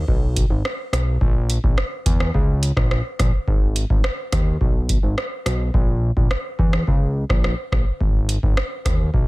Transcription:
0.08 0.45 B1 medium
0.08 kick medium
0.36 kick medium
0.36 closed hi-hat medium
0.50 0.63 G#1 medium
0.65 cross-stick medium
0.93 1.18 B1 medium
0.93 cross-stick medium
0.93 closed hi-hat medium
1.21 1.58 A#1 loud
1.21 kick loud
1.50 closed hi-hat medium
1.64 1.76 A#1 medium
1.64 kick loud
1.78 cross-stick medium
2.06 2.31 E2 medium
2.06 kick loud
2.06 closed hi-hat medium
2.20 cross-stick medium
2.34 2.72 C#2 loud
2.34 kick medium
2.63 closed hi-hat medium
2.77 3.02 A#1 medium
2.77 kick medium
2.77 cross-stick medium
2.91 cross-stick medium
3.19 3.32 A#1 medium
3.19 kick medium
3.19 cross-stick medium
3.19 closed hi-hat medium
3.48 3.85 G#1 loud
3.48 kick loud
3.76 closed hi-hat medium
3.90 4.03 G#1 loud
3.90 kick medium
4.04 cross-stick loud
4.32 4.57 D#2 medium
4.32 kick loud
4.32 cross-stick medium
4.32 closed hi-hat medium
4.61 4.98 B1 medium
4.61 kick medium
4.89 kick medium
4.89 closed hi-hat medium
5.03 5.16 G#1 medium
5.18 cross-stick medium
5.46 5.71 B1 medium
5.46 cross-stick medium
5.46 closed hi-hat medium
5.74 6.11 A#1 loud
5.74 kick loud
6.17 6.29 A#1 medium
6.17 kick medium
6.31 cross-stick medium
6.59 6.84 E2 medium
6.59 kick loud
6.73 cross-stick medium
6.87 7.25 C#2 loud
6.87 kick medium
7.30 7.54 A#1 loud
7.30 kick medium
7.30 cross-stick medium
7.44 cross-stick medium
7.72 7.85 A#1 medium
7.72 kick loud
7.72 cross-stick medium
8.01 8.38 G#1 loud
8.01 kick loud
8.29 closed hi-hat medium
8.43 8.55 G#1 loud
8.43 kick medium
8.57 cross-stick loud
8.85 9.10 D#2 medium
8.85 kick loud
8.85 cross-stick medium
8.85 closed hi-hat medium
9.14 9.28 B1 medium
9.14 kick medium

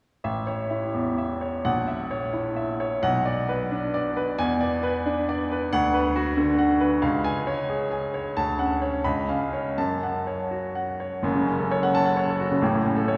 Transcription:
0.24 1.61 A1 medium
0.24 0.61 E5 medium
0.47 0.85 C#5 medium
0.71 1.08 E4 medium
0.94 1.32 E2 medium
1.18 1.55 E5 medium
1.41 1.64 C#5 medium
1.65 2.98 A#1 medium
1.65 2.02 F#5 medium
1.88 2.25 E5 medium
2.11 2.47 C#5 medium
2.33 2.70 E4 medium
2.56 2.93 E5 medium
2.80 3.03 C#5 medium
3.02 4.34 B1 medium
3.02 3.39 F#5 medium
3.26 3.62 D5 medium
3.49 3.85 B4 medium
3.72 4.07 D4 medium
3.94 4.30 D5 medium
4.17 4.39 B4 medium
4.38 5.69 E2 medium
4.38 4.74 G#5 loud
4.61 4.97 D5 medium
4.83 5.20 B4 medium
5.06 5.42 D4 medium
5.29 5.64 D5 medium
5.51 5.73 B4 medium
5.73 6.99 D2 medium
5.73 6.07 F#5 loud
5.94 6.29 B4 medium
6.16 6.51 F#4 medium
6.37 6.72 D3 medium
6.59 6.94 F#5 medium
6.80 7.03 B4 medium
7.02 8.32 C#2 medium
7.02 7.38 F5 medium
7.24 7.60 G#5 medium
7.47 7.83 C#5 medium
7.69 8.05 G#4 medium
7.91 8.28 G#5 medium
8.14 8.37 C#5 medium
8.37 9.02 D2 medium
8.37 8.73 A5 medium
8.59 8.95 C#4 medium
8.59 8.95 F#5 medium
8.82 9.05 C#5 medium
9.04 9.75 C#2 medium
9.04 9.43 B5 medium
9.28 9.67 C#4 medium
9.28 9.68 F5 medium
9.53 9.78 C#5 medium
9.78 11.20 F#2 medium
9.78 10.17 A5 medium
10.03 10.41 F#5 medium
10.27 10.65 C#5 medium
10.51 10.90 F#4 medium
10.75 11.15 F#5 medium
11.00 11.24 C#5 medium
11.23 12.58 F#1 medium
11.23 12.59 F#2 medium
11.35 11.54 C#3 medium
11.47 11.66 C#4 medium
11.59 11.78 A4 medium
11.71 11.90 C#5 medium
11.83 12.02 F#5 medium
11.95 12.13 A5 loud
12.06 12.24 F#5 medium
12.17 12.35 C#5 medium
12.28 12.47 A4 medium
12.40 12.58 F#4 medium
12.51 12.62 C#3 medium
12.62 13.17 A1 medium
12.62 13.17 A2 medium
12.74 12.92 A3 medium
12.85 13.03 C#4 medium
12.96 13.14 A4 medium
13.08 13.17 C#5 medium

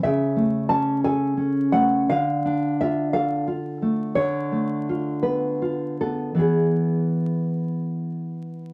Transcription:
0.03 2.05 C#3 medium
0.03 0.68 E5 medium
0.36 1.39 A3 soft
0.69 1.36 C#4 soft
0.69 1.03 A5 medium
1.04 2.09 A4 medium
1.04 1.71 G#5 loud
1.37 2.08 C#4 soft
1.72 2.09 A3 medium
1.72 2.07 F#5 medium
2.10 4.14 D3 medium
2.10 2.76 F5 loud
2.45 3.48 D4 soft
2.81 3.46 F4 medium
2.81 3.13 E5 loud
3.13 4.18 A4 medium
3.13 3.46 F5 medium
3.47 4.17 F4 medium
3.82 4.17 A3 soft
4.15 6.36 D3 medium
4.15 5.20 C#5 loud
4.52 5.63 A3 soft
4.89 5.61 F4 medium
5.23 6.00 B3 soft
5.23 5.98 B4 medium
5.62 6.42 F4 soft
6.01 6.35 B3 soft
6.01 6.37 A4 medium
6.35 8.71 E3 medium
6.35 8.72 B3 soft
6.35 8.72 E4 soft
6.39 8.34 G#4 medium

